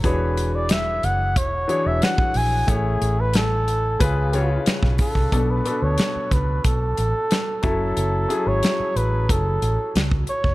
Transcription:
<<
  \new Staff \with { instrumentName = "Flugelhorn" } { \time 4/4 \key fis \minor \tempo 4 = 91 b'8. d''16 e''8 fis''8 cis''8. e''16 fis''8 gis''8 | gis'8. b'16 a'4 gis'4 r8 a'8~ | a'16 b'8 cis''8. b'8 a'4. a'8~ | a'8. cis''8. b'8 a'4 r8 cis''8 | }
  \new Staff \with { instrumentName = "Grand piano" } { \time 4/4 \key fis \minor <e d' fis' gis' cis''>4. r4 <e d' fis' gis' cis''>4. | <a e' cis'' gis''>4. r8 <cis cis' eis' b'>8 <cis cis' eis' cis''>4. | <b, b d' a'>8 <b, b d' a'>4. r4. <fis cis' e' a'>8~ | <fis cis' e' a'>8 <fis cis' e' gis'>4. r2 | }
  \new Staff \with { instrumentName = "Fingered electric bass" } { \clef bass \time 4/4 \key fis \minor e,,4. fis,,8 e,,8 r16 e,,16 r8 ais,,8 | a,,8 a,,4. cis,4 r16 b,,16 r16 bis,,16 | b,,8 r16 d,16 r8 cis,8 b,,8 a,,16 r8. fis,,8 | fis,,8 r16 gis,,16 r8 a,,8 fis,,8 a,,16 r16 cis,8 r16 eis,,16 | }
  \new DrumStaff \with { instrumentName = "Drums" } \drummode { \time 4/4 <hh bd>8 hh8 <hh sn>8 hh8 <hh bd>8 hh8 <hh sn>16 bd16 hho8 | <hh bd>8 hh8 <hh sn>8 hh8 <hh bd>8 hh8 <hh sn>16 <bd sn>16 <hho bd>16 bd16 | <hh bd>8 hh8 <hh sn>8 <hh bd>8 <hh bd>8 hh8 <hh sn>8 <hh bd>8 | hh8 hh8 <hh sn>8 hh8 <hh bd>8 hh8 <hh sn>16 bd16 hh16 bd16 | }
>>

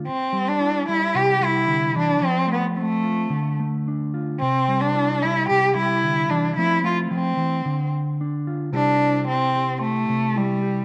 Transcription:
<<
  \new Staff \with { instrumentName = "Cello" } { \time 4/4 \key c \major \tempo 4 = 111 c'8. d'8. e'8 g'8 e'4 d'8 | c'8 b8 a4. r4. | c'8. d'8. e'8 g'8 e'4 d'8 | e'8 f'8 c'4. r4. |
d'4 c'4 a4 g4 | }
  \new Staff \with { instrumentName = "Clean electric guitar" } { \clef bass \time 4/4 \key c \major << { r4 e'8 g4 g4. | r4 c'8 f'8 r4 d'8 f'8 | r4 e'8 g4 g4. | <a c'>2 r4 d'8 f'8 |
<g e' g' c''>8 e'4 g'4. e'8 g'8 | } \\ { r8 g4 r8 c4 d8 e8 | f8 a4. d8 a4. | c8 g4 r8 c4 d8 e8 | f8 a8 f8 e8 d2 |
c2~ c8 c4. | } >> }
>>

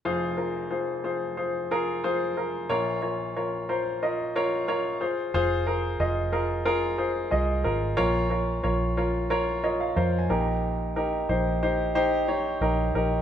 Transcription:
<<
  \new Staff \with { instrumentName = "Grand piano" } { \time 4/4 \key f \minor \tempo 4 = 91 << { r1 | r1 | r1 | r2 r8 ees''16 f''16 \tuplet 3/2 { f''8 aes''8 bes''8 } |
r1 | } \\ { <f' aes' c''>8 <f' aes' bes'>8 <f' aes' c''>8 <f' aes' c''>8 <f' aes' c''>8 <f' aes' bes'>8 <f' aes' c''>8 <f' aes' bes'>8 | <f' bes' des''>8 <f' bes' des''>8 <f' bes' des''>8 <f' bes' c''>8 <f' bes' ees''>8 <f' bes' des''>8 <f' bes' des''>8 <f' aes' c''>8 | <f' aes' c''>8 <f' aes' bes'>8 <f' aes' ees''>8 <f' aes' bes'>8 <f' aes' bes'>8 <f' aes' c''>8 <f' aes' ees''>8 <f' aes' bes'>8 | <f' bes' des''>8 <f' bes' des''>8 <f' bes' des''>8 <f' bes' des''>8 <f' bes' des''>8 <f' bes' des''>8 <f' bes' c''>8 <ees' g' bes'>8~ |
<ees' g' bes'>8 <ees' g' bes'>8 <ees' g' c''>8 <ees' g' c''>8 <ees' g' c''>8 <ees' g' des''>8 <ees' g' bes'>8 <ees' g' bes'>8 | } >> }
  \new Staff \with { instrumentName = "Grand piano" } { \clef bass \time 4/4 \key f \minor <f,, f,>1 | <bes,, bes,>2.~ <bes,, bes,>8 r8 | r1 | bes,4. r2 bes,8~ |
bes,4 r2. | }
  \new Staff \with { instrumentName = "Fingered electric bass" } { \clef bass \time 4/4 \key f \minor r1 | r1 | f,,4 f,,2 c,8 aes,,8 | bes,,4 bes,,2 f,8 bes,,8~ |
bes,,4 bes,,2 bes,,8 bes,,8 | }
>>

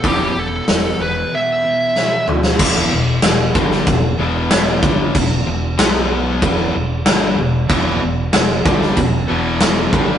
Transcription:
<<
  \new Staff \with { instrumentName = "Lead electric guitar" } { \time 4/4 \key e \minor \tempo 4 = 94 g'8 a'4 b'8 e''4. r8 | r1 | r1 | r1 | }
  \new Staff \with { instrumentName = "Distorted electric guitar" } { \clef bass \time 4/4 \key e \minor <e, b, e>8 r2. r8 | r1 | r1 | <e, b, e>8 <e, b,>8 <e, b,>8 <g, d g>8 <e, b,>8 <e, b, e>4 <g, d g>8 | }
  \new Staff \with { instrumentName = "Overdriven electric guitar" } { \clef bass \time 4/4 \key e \minor <e, b, e>8 r2. r8 | <e, b, e>8 <e, b,>8 <e, b,>8 <g, d g>8 <e, b,>8 <e, b, e>4 <g, d g>8 | <e, b,>8 <e, b,>8 <b, fis b>4 <e, b, e>8 <e, b,>8 <g, d g>8 <e, b,>8 | <e, b, e>8 <e, b,>8 <e, b,>8 <g, d g>8 <e, b,>8 <e, b, e>4 <g, d g>8 | }
  \new Staff \with { instrumentName = "Overdriven electric guitar" } { \clef bass \time 4/4 \key e \minor <e, b, e>8 <e, b, e>8 <e, b, e>8 <e, b, e>8 <e, b, e>8 <e, b, e>8 <e, b, e>8 <e, b, e>8 | <e, b, e>8 <e, b,>8 <e, b,>8 <g, d g>8 <e, b,>8 <e, b, e>4 <g, d g>8 | <e, b,>8 <e, b,>8 <b, fis b>4 <e, b, e>8 <e, b,>8 <g, d g>8 <e, b,>8 | <e, b, e>8 <e, b,>8 <e, b,>8 <g, d g>8 <e, b,>8 <e, b, e>4 <g, d g>8 | }
  \new Staff \with { instrumentName = "Fingered electric bass" } { \clef bass \time 4/4 \key e \minor e,,8 e,,8 e,,8 e,,8 r2 | e,,8 e,,8 e,,8 g,,8 e,,8 e,,4 g,,8 | e,,8 e,,8 b,,4 e,,8 e,,8 g,,8 e,,8 | e,,8 e,,8 e,,8 g,,8 e,,8 e,,4 g,,8 | }
  \new DrumStaff \with { instrumentName = "Drums" } \drummode { \time 4/4 <hho bd>4 <hho sn>4 r4 sn8 toml16 sn16 | <cymc bd>4 <cymc sn>8 bd16 sn16 <cymc bd>4 <cymc sn>8 bd8 | <cymc bd>4 <cymc sn>4 <cymc bd>4 <cymc sn>4 | <cymc bd>4 <cymc sn>8 bd16 sn16 <cymc bd>4 <cymc sn>8 bd8 | }
>>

